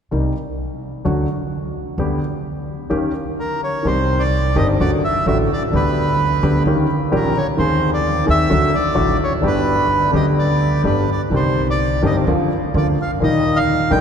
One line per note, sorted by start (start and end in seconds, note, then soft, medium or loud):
0.11 0.31 C2 soft
0.11 0.32 C2 medium
0.11 0.32 C3 soft
0.11 0.31 G3 soft
0.11 0.32 A#3 soft
0.11 0.32 D#4 soft
1.05 1.25 D2 medium
1.05 1.25 D3 medium
1.05 1.25 F#3 soft
1.05 1.25 A3 soft
1.05 1.25 F#4 medium
1.98 2.17 D2 medium
1.98 2.18 D2 medium
1.98 2.18 D3 medium
1.98 2.18 G3 soft
1.98 2.18 B3 soft
1.98 2.18 G4 medium
2.90 3.10 D#2 medium
2.90 3.10 D#3 medium
2.90 3.10 A#3 soft
2.90 3.10 C#4 soft
2.90 3.10 G4 medium
3.40 3.61 A#4 soft
3.64 3.87 C#5 medium
3.83 4.53 C2 medium
3.83 4.53 C3 medium
3.83 4.52 D#3 soft
3.83 4.52 A#3 soft
3.83 4.53 C4 soft
3.87 4.54 G4 medium
3.87 4.23 C5 medium
4.20 4.57 D5 medium
4.55 4.76 G1 medium
4.55 4.76 G2 medium
4.55 4.76 D#3 medium
4.55 4.76 A#3 medium
4.55 4.76 C4 medium
4.55 4.76 G4 medium
4.55 4.67 D#5 medium
4.80 5.00 D2 medium
4.80 5.00 D3 medium
4.80 5.00 F#3 medium
4.80 5.00 A3 medium
4.80 5.00 F#4 medium
4.80 4.91 D5 medium
5.05 5.26 E5 medium
5.26 5.46 A1 medium
5.26 5.47 A2 medium
5.26 5.46 D3 medium
5.26 5.46 F#3 soft
5.26 5.47 A3 soft
5.26 5.47 F#4 medium
5.26 5.38 E5 medium
5.53 5.63 D5 medium
5.72 6.39 D2 medium
5.72 6.40 D2 medium
5.72 6.39 D3 medium
5.72 6.39 G3 soft
5.72 6.40 B3 soft
5.72 6.40 G4 medium
5.72 6.63 B4 medium
6.43 6.62 D2 medium
6.43 6.63 D3 medium
6.43 6.62 G3 medium
6.43 6.62 B3 medium
6.43 6.62 G4 medium
6.66 6.85 D#2 medium
6.66 6.86 D#2 medium
6.66 6.86 D#3 medium
6.66 6.86 A#3 medium
6.66 6.86 C#4 medium
6.66 6.86 G4 medium
7.11 7.31 A#1 medium
7.11 7.32 A#1 medium
7.11 7.31 A#2 medium
7.11 7.31 D#3 medium
7.11 7.31 A#3 soft
7.11 7.31 C#4 medium
7.11 7.32 G4 medium
7.16 7.38 A#4 medium
7.37 7.47 C#5 medium
7.57 8.24 D#2 medium
7.57 8.24 D#3 medium
7.57 8.23 A#3 soft
7.57 8.24 C4 soft
7.57 8.25 G#4 medium
7.57 7.91 C5 medium
7.94 8.25 D5 medium
8.26 8.46 D#2 medium
8.26 8.47 D#2 medium
8.26 8.46 D#3 medium
8.26 8.46 A#3 medium
8.26 8.46 C4 medium
8.26 8.46 G#4 medium
8.30 8.76 E5 medium
8.50 8.69 D2 medium
8.50 8.70 D2 medium
8.50 8.69 D3 medium
8.50 8.69 F#3 medium
8.50 8.69 A3 medium
8.50 8.69 F#4 medium
8.75 9.17 D5 medium
8.95 9.15 A1 medium
8.95 9.16 A1 medium
8.95 9.15 A2 medium
8.95 9.15 D3 medium
8.95 9.15 F#3 soft
8.95 9.15 A3 medium
8.95 9.15 F#4 medium
9.24 9.33 C#5 medium
9.40 10.09 G1 medium
9.40 10.10 G1 medium
9.40 10.09 G2 medium
9.40 10.08 D3 medium
9.40 10.09 G3 soft
9.40 10.10 B3 soft
9.44 10.10 G4 medium
9.44 10.11 B4 medium
10.11 10.80 D2 medium
10.11 10.81 D2 medium
10.11 10.12 D3 medium
10.11 10.81 D3 medium
10.11 10.80 G3 soft
10.11 10.81 B3 medium
10.15 10.82 G4 medium
10.15 10.26 D#5 medium
10.39 10.82 D5 medium
10.84 11.04 G1 medium
10.84 11.05 G1 medium
10.84 11.05 G2 medium
10.84 11.04 D3 medium
10.84 11.04 G3 soft
10.84 11.04 B3 soft
10.84 11.05 G4 medium
10.84 11.10 B4 medium
11.12 11.22 D5 medium
11.30 11.99 C2 medium
11.30 12.00 C2 medium
11.30 12.00 C3 medium
11.30 11.99 D#3 soft
11.30 12.00 A#3 soft
11.30 12.00 C4 soft
11.34 12.01 G4 medium
11.34 11.67 C5 medium
11.70 12.02 D5 medium
12.02 12.23 G1 medium
12.02 12.23 G2 medium
12.02 12.23 D#3 medium
12.02 12.23 A#3 medium
12.02 12.23 C4 medium
12.02 12.23 G4 medium
12.02 12.16 D#5 medium
12.27 12.47 D2 medium
12.27 12.48 D3 medium
12.27 12.47 F3 medium
12.27 12.47 A#3 medium
12.27 12.48 F4 medium
12.74 12.94 D2 medium
12.74 12.95 D2 medium
12.74 12.95 D3 medium
12.74 12.94 F3 soft
12.74 12.94 A#3 soft
12.74 12.95 F4 medium
12.74 12.87 D5 medium
13.02 13.11 F5 medium
13.20 13.88 D#2 medium
13.20 13.87 A#2 medium
13.20 13.87 D#3 medium
13.20 13.87 G3 medium
13.20 13.88 A#3 medium
13.20 13.89 D#4 medium
13.20 13.58 D#5 medium
13.56 13.92 F5 medium
13.91 14.01 A#1 medium
13.91 14.01 A#2 medium
13.91 14.01 D3 medium
13.91 14.01 G3 medium
13.91 14.01 A#3 medium
13.91 14.01 D#4 medium
13.91 14.01 G5 medium